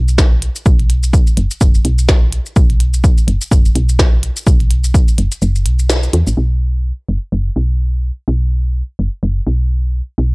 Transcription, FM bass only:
0.00 0.49 B1 medium
0.66 1.21 B1 loud
1.37 1.47 F#1 medium
1.61 1.79 F#1 loud
1.85 2.40 B1 medium
2.56 3.11 B1 loud
3.28 3.37 F#1 medium
3.51 3.69 F#1 loud
3.75 4.30 B1 medium
4.47 5.01 B1 loud
5.18 5.28 F#1 medium
5.42 5.67 F#1 loud
5.66 6.08 B1 loud
6.13 6.23 E2 medium
6.27 6.34 A1 medium
6.37 6.92 B1 medium
7.09 7.18 F#1 medium
7.32 7.50 F#1 medium
7.56 8.11 B1 medium
8.28 8.82 B1 medium
8.99 9.09 F#1 medium
9.23 9.41 F#1 loud
9.47 10.01 B1 medium
10.18 10.35 B1 medium

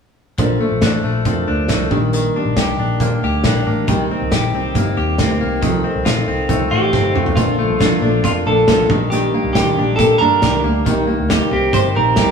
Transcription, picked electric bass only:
0.39 0.57 A#1 medium
0.71 0.80 A#1 medium
0.82 1.01 A1 medium
1.04 1.22 A#1 medium
1.25 1.44 F2 medium
1.47 1.66 D2 medium
1.70 1.88 C2 medium
1.91 2.28 A#1 medium
2.45 2.55 A#1 medium
2.57 2.75 C2 medium
2.79 2.97 A#1 medium
3.00 3.19 A#2 medium
3.23 3.41 D2 medium
3.44 3.63 A#1 medium
3.66 3.85 A1 medium
3.88 4.06 C2 medium
4.21 4.30 C2 medium
4.32 4.50 A#1 medium
4.54 4.72 C2 medium
4.75 4.94 G1 medium
4.97 5.16 D#2 medium
5.19 5.37 D2 medium
5.41 5.60 C2 medium
5.62 5.81 C2 medium
5.95 6.04 C2 medium
6.06 6.24 A#1 medium
6.28 6.46 C2 medium
6.49 6.68 C2 medium
6.72 6.90 A1 medium
6.93 7.12 G1 medium
7.15 7.34 F1 medium
7.37 7.65 A#1 medium
7.69 7.88 C2 medium
8.01 8.20 A#1 medium
8.24 8.42 F2 medium
8.46 8.64 A#1 medium
8.68 8.87 C2 medium
8.90 9.36 A#1 medium
9.44 9.63 C2 medium
9.77 9.96 A#1 medium
9.99 10.17 A#2 medium
10.21 10.39 G2 medium
10.43 10.61 C2 medium
10.64 10.83 D2 medium
11.20 11.38 D2 medium
11.51 11.70 C2 medium
11.73 11.92 G1 medium
11.96 12.14 A#1 medium
12.17 12.31 C2 medium

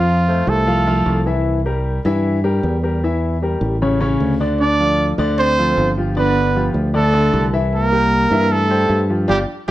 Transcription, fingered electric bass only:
0.00 0.41 F2 medium
0.47 1.02 C2 medium
1.06 1.98 C2 medium
2.05 2.59 G2 medium
2.63 3.55 E2 medium
3.61 4.16 A1 medium
4.20 5.12 D2 medium
5.18 5.73 D2 medium
5.77 6.69 G1 loud
6.74 7.29 D2 medium
7.33 8.25 C2 loud
8.31 8.86 G2 medium
8.89 9.26 G2 medium
9.29 9.44 G1 medium

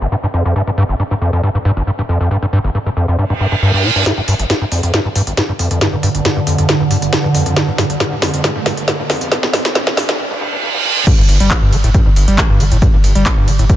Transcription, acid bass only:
0.02 0.07 G1 medium
0.12 0.16 G2 medium
0.23 0.27 G2 medium
0.34 0.43 F2 medium
0.45 0.54 F2 medium
0.56 0.62 G2 medium
0.67 0.71 G2 medium
0.78 0.84 G2 loud
0.89 0.95 G1 medium
0.99 1.03 G2 medium
1.11 1.15 G2 medium
1.21 1.31 F2 medium
1.33 1.42 F2 medium
1.43 1.50 G2 medium
1.55 1.58 G2 medium
1.65 1.72 G2 loud
1.77 1.83 G1 medium
1.87 1.91 G2 medium
1.99 2.02 G2 medium
2.09 2.19 F2 medium
2.21 2.29 F2 medium
2.31 2.37 G2 medium
2.42 2.46 G2 medium
2.53 2.59 G2 loud
2.64 2.70 G1 medium
2.75 2.79 G2 medium
2.86 2.90 G2 medium
2.97 3.06 F2 medium
3.08 3.17 F2 medium
3.19 3.25 G2 medium
3.30 3.33 G2 medium
3.40 3.47 G2 medium
3.52 3.55 G2 medium
3.62 3.72 G2 loud
3.74 3.86 G2 medium
3.84 3.91 A#2 medium
3.96 4.04 G2 medium
4.06 4.12 G2 medium
4.18 4.21 G2 medium
4.28 4.34 G2 loud
4.40 4.45 G1 medium
4.50 4.54 G2 medium
4.61 4.65 G2 medium
4.72 4.81 F2 medium
4.83 4.92 F2 medium
4.94 5.00 G2 medium
5.05 5.09 G2 medium
5.16 5.22 G2 loud
5.27 5.33 G1 medium
5.37 5.41 G2 medium
5.49 5.52 G2 medium
5.59 5.69 F2 medium
5.71 5.79 F2 medium
5.81 5.88 G2 medium
5.93 5.96 G2 medium
6.03 6.10 G2 loud
6.15 6.20 G1 medium
6.25 6.29 G2 medium
6.37 6.40 G2 medium
6.47 6.57 F2 medium
6.58 6.67 F2 medium
6.69 6.75 G2 medium
6.80 6.84 G2 medium
6.91 6.97 G2 loud
7.02 7.08 G1 medium
7.13 7.16 G2 medium
7.24 7.28 G2 medium
7.35 7.44 F2 medium
7.46 7.55 F2 medium
7.56 7.63 G2 medium
7.68 7.71 G2 medium
7.78 7.85 G2 medium
7.90 7.96 G1 medium
8.00 8.04 G2 medium
8.12 8.15 G2 medium
8.22 8.32 F2 medium
8.34 8.42 F2 medium
8.44 8.50 G2 medium
8.56 8.59 G2 medium
8.66 8.72 G2 loud
8.77 8.83 G1 medium
8.88 8.92 G2 medium
8.99 9.03 G2 medium
9.10 9.19 F2 medium
9.21 9.30 F2 medium
9.32 9.38 G2 medium
9.43 9.47 G2 medium
9.53 9.60 G2 loud
9.65 9.71 G1 medium
9.75 9.82 G2 medium
9.87 9.90 G2 medium
9.97 10.04 G2 loud
10.09 10.15 G1 medium
10.19 10.26 G2 medium
10.31 10.34 G2 medium
10.41 10.48 G2 medium
10.53 10.56 G2 medium
10.63 10.69 G2 medium
10.75 10.78 G2 medium
10.85 10.91 G2 medium
10.97 11.00 G2 medium
11.07 11.13 G2 loud
11.18 11.22 G2 medium
11.29 11.38 G1 medium
11.40 11.52 G3 medium
11.51 11.60 G1 medium
11.62 11.74 G2 loud
11.73 11.76 F3 medium
11.84 11.90 A2 medium
11.94 12.01 G2 loud
12.06 12.09 G2 medium
12.16 12.26 G1 medium
12.28 12.40 G3 medium
12.38 12.48 G1 medium
12.50 12.62 G2 loud
12.60 12.64 F3 medium
12.72 12.77 A2 medium
12.82 12.88 G2 loud
12.94 12.97 G2 medium
13.04 13.13 G1 medium
13.15 13.27 G3 medium
13.26 13.35 G1 medium
13.37 13.49 G2 loud
13.48 13.52 F3 medium
13.59 13.65 A2 medium
13.70 13.76 G2 loud

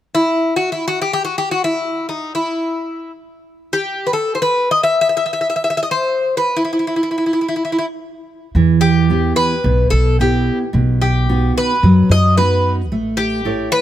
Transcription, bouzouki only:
0.15 0.56 E4 medium
0.56 0.72 F#4 medium
0.72 0.87 E4 medium
0.88 1.01 F#4 medium
1.02 1.12 G4 medium
1.13 1.24 G4 medium
1.25 1.37 F#4 medium
1.38 1.50 G4 medium
1.51 1.64 F#4 medium
1.64 2.08 E4 medium
2.09 2.34 D#4 medium
2.35 3.11 E4 medium
3.73 4.06 G4 medium
4.07 4.13 B4 medium
4.13 4.34 A4 medium
4.35 4.41 C5 medium
4.42 4.71 B4 medium
4.71 4.82 D#5 medium
4.83 5.00 E5 medium
5.01 5.08 E5 medium
5.09 5.16 E5 medium
5.17 5.24 E5 medium
5.26 5.32 E5 medium
5.33 5.40 E5 medium
5.41 5.47 E5 medium
5.50 5.55 E5 medium
5.56 5.62 E5 medium
5.64 5.69 E5 medium
5.70 5.76 E5 medium
5.77 5.82 E5 medium
5.83 5.89 D#5 medium
5.91 6.37 C5 medium
6.37 6.58 B4 medium
6.57 6.63 E4 medium
6.65 6.71 E4 soft
6.73 6.78 E4 soft
6.79 6.86 E4 soft
6.87 6.94 E4 soft
6.96 7.02 E4 soft
7.03 7.09 E4 soft
7.11 7.17 E4 soft
7.18 7.24 E4 soft
7.26 7.32 E4 soft
7.33 7.39 E4 soft
7.41 7.47 E4 soft
7.48 7.55 E4 soft
7.56 7.62 E4 soft
7.65 7.70 E4 soft
7.72 7.77 E4 soft
7.79 7.85 E4 soft
8.81 9.32 G4 medium
9.36 9.87 B4 medium
9.90 10.16 A4 medium
10.21 10.58 G4 medium
11.02 11.52 G4 medium
11.58 12.11 B4 medium
12.11 12.36 D#5 medium
12.38 12.75 B4 medium
13.17 13.68 G4 medium
13.72 13.81 B4 medium

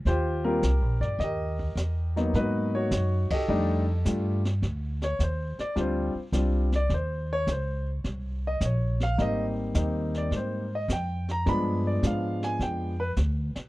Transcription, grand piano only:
0.07 0.43 F4 medium
0.07 0.46 G4 medium
0.07 0.43 C5 medium
0.45 0.61 G3 medium
0.45 0.61 A#3 medium
0.45 0.61 C4 medium
0.45 0.61 F4 medium
0.45 1.17 G4 medium
0.45 1.03 A#4 medium
1.01 1.20 D5 medium
1.20 2.32 G4 medium
1.20 2.32 A#4 soft
1.20 2.12 D#5 medium
2.16 2.88 F#3 medium
2.16 2.88 A#3 medium
2.16 2.88 B3 medium
2.16 2.35 D#4 medium
2.35 3.45 D#4 medium
2.35 2.75 F#4 medium
2.35 2.71 B4 medium
2.75 3.46 F#4 medium
2.75 3.33 C#5 medium
3.31 4.42 G4 medium
3.31 4.42 A4 medium
3.31 4.02 D#5 medium
3.49 3.84 G3 medium
3.49 3.84 A3 medium
3.49 3.84 D4 medium
3.49 3.84 D#4 medium
4.06 4.41 G3 soft
4.06 4.41 A3 soft
4.06 4.41 D4 soft
4.06 4.41 F4 medium
5.04 5.20 C#5 medium
5.23 5.59 C5 medium
5.60 5.77 D5 medium
5.76 6.11 G3 medium
5.76 6.11 C4 medium
5.76 6.12 D4 medium
5.76 6.12 F4 medium
5.81 6.17 C5 medium
6.33 6.68 G3 medium
6.33 6.69 C4 medium
6.33 6.69 D4 medium
6.33 6.69 F4 medium
6.76 6.92 D5 medium
6.94 7.30 C5 medium
7.33 7.49 C#5 loud
7.52 7.88 C5 medium
8.47 8.63 D#5 medium
8.65 9.01 C#5 medium
9.03 9.19 F5 loud
9.18 9.73 G3 soft
9.18 9.73 A#3 soft
9.18 9.74 C4 soft
9.18 9.74 D#4 medium
9.18 9.44 D#5 medium
9.75 10.63 G3 soft
9.75 10.63 A#3 medium
9.75 10.63 C4 soft
9.75 10.63 D#4 medium
10.18 10.33 D5 medium
10.36 10.72 C5 medium
10.75 10.91 D#5 medium
10.93 11.29 G5 medium
11.31 11.47 A#5 medium
11.46 12.01 F3 medium
11.46 12.01 G#3 medium
11.46 12.02 B3 medium
11.46 12.02 D4 medium
11.46 11.85 B5 medium
11.87 12.04 D5 medium
12.04 12.92 F3 medium
12.04 12.92 G#3 soft
12.04 12.92 B3 soft
12.04 12.92 D4 medium
12.04 12.43 F5 medium
12.44 12.61 G#5 medium
12.63 12.99 G5 medium
13.00 13.10 B4 medium

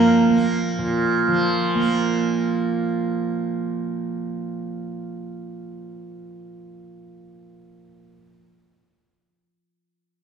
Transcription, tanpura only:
0.00 0.78 A#2 medium
0.00 1.28 F3 medium
0.00 0.30 A#3 medium
0.30 1.75 A#3 medium
0.78 7.93 A#2 medium
1.28 8.28 F3 medium
1.75 7.65 A#3 medium

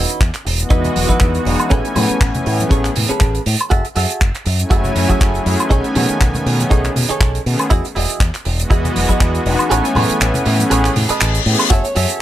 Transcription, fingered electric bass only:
0.21 0.30 E2 loud
0.46 0.63 E1 medium
0.71 0.88 E2 loud
0.96 1.05 E1 medium
1.21 1.38 E2 medium
1.46 1.55 E1 loud
1.72 1.80 A1 loud
1.96 2.05 A2 loud
2.10 muted fingered electric bass stroke soft
2.21 2.30 A1 loud
2.46 2.63 A2 medium
2.71 2.88 A1 loud
2.96 3.05 A2 medium
3.10 muted fingered electric bass stroke soft
3.21 3.38 A1 medium
3.46 3.55 A2 loud
3.72 3.80 F#1 loud
3.96 4.05 F#2 loud
4.21 4.30 F#1 loud
4.46 4.63 F#2 medium
4.71 4.88 F#1 loud
4.96 5.05 F#2 medium
5.21 5.38 F#1 medium
5.46 5.55 F#2 loud
5.71 5.80 B1 loud
5.96 6.05 B2 loud
6.10 muted fingered electric bass stroke soft
6.21 6.30 B1 loud
6.46 6.63 B2 medium
6.71 6.88 B1 medium
6.96 7.05 B2 medium
7.10 muted fingered electric bass stroke soft
7.21 7.38 B1 medium
7.46 7.55 B2 loud
7.71 7.80 E2 loud
7.96 8.05 E1 loud
8.20 8.29 E2 loud
8.46 8.63 E1 medium
8.71 8.88 E2 loud
8.96 9.05 E1 medium
9.21 9.38 E2 medium
9.46 9.55 E1 loud
9.71 9.80 A1 loud
9.96 10.05 A2 loud
10.10 muted fingered electric bass stroke soft
10.21 10.30 A1 loud
10.46 10.63 A2 medium
10.71 10.88 A1 loud
10.96 11.05 A2 medium
11.10 muted fingered electric bass stroke soft
11.21 11.38 A1 medium
11.46 11.55 A2 loud
11.71 11.80 F#1 loud
11.96 12.05 F#2 loud

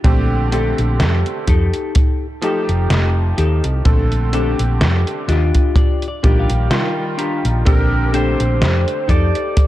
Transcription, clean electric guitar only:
0.52 0.78 C4 medium
0.52 0.78 D4 medium
0.52 0.79 G4 medium
0.52 0.79 A4 medium
1.47 2.25 D#4 medium
1.47 2.26 G4 medium
1.47 2.26 A4 loud
2.42 2.69 D#4 medium
2.42 2.69 G4 medium
2.42 2.70 A4 loud
3.37 3.64 D#4 medium
3.37 3.64 G4 medium
3.37 3.65 A4 medium
4.33 4.59 C4 medium
4.33 4.59 D4 medium
4.33 4.60 G4 medium
4.33 4.60 A4 medium
5.28 6.06 D4 medium
5.28 6.07 F4 medium
5.28 6.07 G4 medium
5.28 5.73 D#5 medium
5.76 6.06 D5 medium
6.08 6.37 D5 medium
6.23 6.49 D4 medium
6.23 6.50 F4 medium
6.23 6.50 G4 medium
6.39 6.69 F5 medium
6.71 7.15 G5 medium
7.17 7.44 D4 medium
7.17 7.45 F4 medium
7.17 7.45 G4 medium
7.17 7.63 A#5 medium
8.13 8.40 C4 medium
8.13 8.40 D4 medium
8.13 8.40 G4 medium
8.13 8.40 A4 medium
9.08 9.67 D#4 medium
9.08 9.67 G4 medium
9.08 9.67 A4 loud

